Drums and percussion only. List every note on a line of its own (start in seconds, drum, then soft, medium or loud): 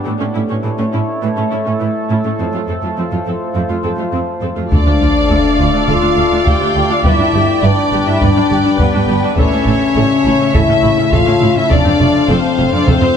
4.72 taiko medium
5.88 taiko medium
6.47 taiko medium
7.05 taiko medium
8.21 taiko medium
8.79 taiko medium
9.37 taiko medium
10.55 taiko medium
11.13 taiko medium
11.71 taiko medium
12.88 taiko medium